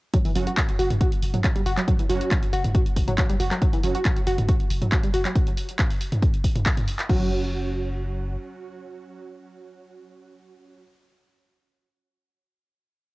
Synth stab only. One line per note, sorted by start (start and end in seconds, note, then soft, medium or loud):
0.35 0.48 F#3 medium
0.35 0.48 C#4 medium
0.35 0.48 F#4 medium
2.09 2.29 F#3 loud
2.09 2.29 C#4 medium
2.09 2.29 F#4 loud
3.83 3.96 F#3 medium
3.83 3.96 C#4 medium
3.83 3.96 F#4 medium
7.09 10.84 F#3 medium
7.09 10.84 C#4 medium
7.09 10.84 F#4 medium